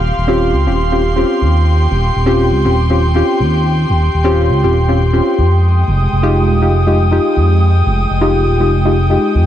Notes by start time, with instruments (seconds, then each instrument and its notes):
Already playing: analog synth bass D#1, synth stab C4 C#4 F4 G4, analog synth pad G4 F5 C6
0.17 analog synth bass D#1
0.27 synth stab C4 C#4 F4 G4
0.53 analog synth bass C#2
0.67 analog synth bass D#1, synth stab C4 C#4 F4 G4
0.91 synth stab C4 C#4 F4 G4
1.16 synth stab C4 C#4 F4 G4
1.27 analog synth pad G5
1.41 analog synth bass D#2
1.91 analog synth bass D#1
2.16 analog synth bass D#1
2.26 synth stab C4 C#4 F4 G4
2.51 analog synth bass C#2
2.65 analog synth bass D#1, synth stab C4 C#4 F4 G4
2.90 synth stab C4 C#4 F4 G4
3.14 synth stab C4 C#4 F4 G4
3.40 analog synth bass D#2
3.89 analog synth bass D#1
4.14 analog synth bass D#1
4.24 synth stab C4 C#4 F4 G4
4.49 analog synth bass C#2
4.63 analog synth bass D#1, synth stab C4 C#4 F4 G4
4.88 synth stab C4 C#4 F4 G4
5.13 synth stab C4 C#4 F4 G4
5.38 analog synth bass F2
5.49 analog synth pad G#3 G5 D#6
5.88 analog synth bass F1
6.12 analog synth bass F1
6.22 synth stab G#3 D#4 F4 G4
6.48 analog synth bass D#1
6.62 analog synth bass F1, synth stab G#3 D#4 F4 G4
6.86 synth stab G#3 D#4 F4 G4
7.11 synth stab G#3 D#4 F4 G4
7.36 analog synth bass F2
7.86 analog synth bass F1
8.11 analog synth bass F1
8.21 synth stab G#3 D#4 F4 G4
8.46 analog synth bass D#1
8.60 analog synth bass F1, synth stab G#3 D#4 F4 G4
8.85 synth stab G#3 D#4 F4 G4
9.09 synth stab G#3 D#4 F4 G4
9.35 analog synth bass F2